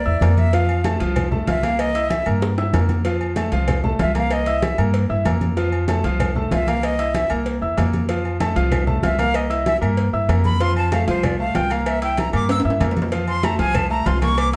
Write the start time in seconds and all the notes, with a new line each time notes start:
Already playing: D5
0.05 E2 E4 E5 E6, high conga
0.21 F2 A#3 A#4 A#5, cowbell, high conga, low timbale, low agogo
0.37 E5, high conga, low agogo
0.53 F3 F4 F5, cowbell, high conga, low agogo
0.69 high conga, low agogo
0.84 A3 A4 A5, cowbell, high conga, low timbale, low agogo
1.00 C2 F3 F4 F5, cowbell
1.16 cowbell, high conga, low conga, low agogo
1.31 A3 A4 A5, high conga, low conga
1.47 C2 F4 E5 F5 F6, cowbell, high conga, low timbale, low agogo
1.63 A#3 A#4 F5 A#5, cowbell, high conga, low agogo
1.79 D#5, cowbell, high conga, low agogo
1.95 E4 E5 E6, cowbell, high conga
2.10 E5, cowbell, high conga, low timbale, low agogo
2.26 G2 A#3 A#4 A#5, high conga, low agogo
2.42 cowbell, high bongo, high conga
2.58 E4 E5 E6, low bongo, high conga
2.73 F2 A#3 A#4 A#5, cowbell, low bongo, high conga, low timbale, low agogo
2.89 low bongo, high conga, low agogo
3.05 F3 F4 F5, cowbell, high conga, low agogo
3.21 high conga, low agogo
3.36 A3 A4 A5, cowbell, high conga, low timbale, low agogo
3.52 C2 F3 F4 F5, cowbell
3.68 cowbell, high conga, low conga, low agogo
3.84 A3 A4 A5, high conga, low conga
3.99 C2 F4 E5 F5 F6, cowbell, high conga, low timbale, low agogo
4.15 A#3 A#4 F5 A#5, cowbell, high conga, low agogo
4.31 D#5, cowbell, high conga, low agogo
4.46 E4 E5 E6, cowbell, high conga
4.62 E5, cowbell, high conga, low timbale, low agogo
4.78 G2 A#3 A#4 A#5, high conga, low agogo
4.94 cowbell
5.09 G2 E4 E5 E6, high conga
5.25 F2 A#3 A#4 A#5, cowbell, high conga, low timbale, low agogo
5.41 high conga, low agogo
5.57 F3 F4 F5, cowbell, high conga, low agogo
5.72 high conga, low agogo
5.88 A3 A4 A5, cowbell, high conga, low timbale, low agogo
6.04 C2 F3 F4 F5, cowbell
6.20 cowbell, high conga, low conga, low agogo
6.35 A3 A4 A5, high conga, low conga
6.51 C2 F4 E5 F5 F6, cowbell, high conga, low timbale, low agogo
6.67 A#3 A#4 F5 A#5, cowbell, high conga, low agogo
6.83 D#5, cowbell, high conga, low agogo
6.99 E4 E5 E6, cowbell, high conga
7.14 E5, cowbell, high conga, low timbale, low agogo
7.30 C2 A#3 A#4 A#5, high conga, low agogo
7.46 cowbell, high conga
7.62 E2 E4 E5 E6, high conga
7.77 F2 A#3 A#4 A#5, cowbell, high conga, low timbale, low agogo
7.93 high conga, low agogo
8.09 F3 F4 F5, cowbell, high conga, low agogo
8.25 high conga, low agogo
8.40 A3 A4 A5, cowbell, high conga, low timbale, low agogo, claves
8.56 C2 F3 F4 F5, cowbell
8.72 cowbell, high conga, low conga, low agogo, claves
8.87 A3 A4 A5, high conga, low conga
9.03 C2 F4 E5 F5 F6, cowbell, high conga, low timbale, low agogo
9.18 A#3 A#4 F5 A#5, cowbell, high conga, low agogo
9.34 D#5, cowbell, high conga, low agogo, claves
9.50 E4 E5 E6, cowbell, high conga
9.66 E5, cowbell, high conga, low timbale, low agogo
9.81 G2 A#3 A#4 A#5, high conga, low agogo, claves
9.97 cowbell, high conga
10.13 G2 E4 E5 E6, high conga
10.28 F2 A#3 A#4 A#5, cowbell, high conga, low timbale, low agogo, claves
10.45 B5, high conga, low agogo
10.60 F3 F4 F5 C6, cowbell, high conga, low agogo
10.76 A5, high conga, low agogo
10.92 A3 A4 F5 A5, cowbell, high conga, low timbale, low agogo, claves
11.07 C2 F3 F4 C5 F5, cowbell
11.23 D5, cowbell, high conga, low conga, low agogo, claves
11.39 A3 A4 F5 A5, high conga
11.55 C2 F4 F5 G5 F6, cowbell, high conga, low timbale, low agogo
11.70 A#3 A#4 F5 A#5, cowbell, low agogo
11.86 E5, cowbell, high conga, low agogo, claves
12.02 E4 E5 G5 E6, cowbell, high conga
12.17 A#5, cowbell, high conga, low timbale, low agogo
12.33 G2 A#3 A#4 A#5 D6, high conga, low agogo, claves
12.49 E6, cowbell, high conga, high timbale
12.60 high timbale
12.65 G2 E4 E5 E6, high conga
12.70 high timbale
12.80 F2 A#3 A#4 A#5, cowbell, high conga, low timbale, low agogo, claves
12.91 low timbale
12.97 high conga, low agogo
13.02 low timbale
13.12 F3 F4 F5, cowbell, high conga, low agogo
13.28 C6, high conga, low agogo
13.43 A3 A4 A5 A#5, cowbell, high conga, low timbale, low agogo, claves
13.59 C2 F3 F4 F5 G#5, cowbell
13.75 A5, cowbell, high conga, low conga, low agogo, claves
13.90 A3 A4 A5 A#5, high conga
14.06 C2 F4 F5 C6 F6, cowbell, high conga, low timbale, low agogo
14.22 A#3 A#4 A#5 C#6, cowbell, high conga, low agogo
14.38 D6, cowbell, high conga, low agogo, claves